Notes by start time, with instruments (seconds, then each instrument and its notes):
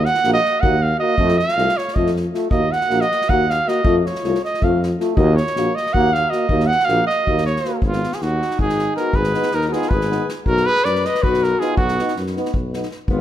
0.05 cornet F#5, snare
0.14 snare
0.23 tuba A#1, trombone A#3, euphonium F#4, snare
0.33 cornet D#5, snare
0.45 snare
0.61 tuba D#2, trombone A#3, euphonium F#4, cornet F#5, kick
0.82 cornet F5
1.00 trombone A#3, euphonium F#4, cornet D#5
1.18 tuba F2, trombone A3, euphonium F4, kick
1.28 snare
1.38 cornet F5, snare
1.49 snare
1.56 tuba C2, trombone A3, euphonium F4, snare
1.69 snare
1.77 cornet C#5, snare
1.88 snare
1.95 tuba F2, trombone A3, euphonium F4, cornet D#5, kick
2.07 snare
2.16 snare
2.33 trombone A3, euphonium F4, snare
2.51 tuba D#2, trombone A#3, euphonium F#4, cornet D#5, kick
2.72 cornet F#5, snare
2.81 snare
2.89 tuba A#1, trombone A#3, euphonium F#4, snare
3.01 cornet D#5, snare
3.12 snare
3.21 snare
3.28 tuba D#2, trombone A#3, euphonium F#4, cornet F#5, kick
3.50 cornet F5, snare
3.67 trombone A#3, euphonium F#4, cornet D#5, snare
3.84 tuba F2, trombone A3, euphonium F4, kick
3.99 cornet D#5
4.06 cornet C#5, snare
4.15 snare
4.23 tuba C2, trombone A3, euphonium F4, snare
4.35 snare
4.45 cornet D#5, snare
4.54 snare
4.62 tuba F2, trombone A3, euphonium F4, cornet F5, kick
4.83 snare
5.00 trombone A3, euphonium F4, snare
5.16 tuba D#2, trombone A#3, euphonium F#4, cornet D#5, kick
5.36 cornet C#5, snare
5.47 snare
5.55 tuba A#1, trombone A#3, euphonium F#4, snare
5.75 cornet D#5, snare
5.86 snare
5.93 tuba D#2, trombone A#3, euphonium F#4, cornet F#5, kick
6.13 cornet F5, snare
6.30 trombone A#3, euphonium F#4, cornet D#5, snare
6.49 tuba D#2, trombone A#3, euphonium F#4, kick
6.60 snare
6.66 cornet F#5
6.72 snare
6.80 snare
6.85 tuba A#1, euphonium F#4, cornet F5, snare
6.89 trombone A#3
7.06 cornet D#5, snare
7.26 tuba D#2, trombone A#3, euphonium F#4, kick
7.38 snare
7.46 cornet C#5, snare
7.56 snare
7.65 trombone A#3, euphonium F#4, snare
7.81 tuba G#1, alto saxophone B3, kick
7.86 cornet F4
7.93 snare
8.04 snare
8.12 alto saxophone F4, cornet G#4, snare
8.21 tuba D#2, alto saxophone D#4, cornet F#4, snare
8.42 snare
8.51 snare
8.59 tuba G#1, alto saxophone D#4, cornet G#4, kick
8.69 snare
8.79 snare
8.96 trombone B3, euphonium D#4, alto saxophone F#4, cornet A#4, snare
9.13 tuba G#1, alto saxophone G#4, cornet B4, kick
9.24 snare
9.33 trombone B3, euphonium D#4, snare
9.43 snare
9.51 tuba D#2, alto saxophone D#4, cornet A#4, snare
9.62 snare
9.67 alto saxophone F#4, cornet A#4
9.72 trombone B3, euphonium D#4, alto saxophone F4, cornet G#4, snare
9.82 snare
9.89 tuba G#1, cornet B4, kick
9.94 alto saxophone G#4
10.01 snare
10.10 trombone B3, euphonium D#4, snare
10.29 snare
10.45 tuba B1, alto saxophone F#4, cornet A#4, kick
10.57 snare
10.66 alto saxophone G#4, cornet B4, snare
10.76 snare
10.85 tuba F#2, alto saxophone B4, cornet D5, snare
10.95 snare
11.05 alto saxophone B4, cornet D#5, snare
11.15 snare
11.23 tuba B1, alto saxophone F#4, cornet B4, kick
11.34 snare
11.43 alto saxophone F#4, cornet A#4, snare
11.59 trombone B3, euphonium D#4, alto saxophone F4, cornet G#4, snare
11.77 tuba B1, alto saxophone D#4, cornet F#4, kick
11.88 snare
11.99 trombone B3, euphonium D#4, snare
12.08 snare
12.16 tuba F#2, snare
12.27 snare
12.37 trombone B3, euphonium D#4, snare
12.45 snare
12.54 tuba B1, kick
12.74 trombone B3, euphonium D#4, snare
12.83 snare
12.91 snare
13.08 tuba G#1, alto saxophone B3, cornet F4, kick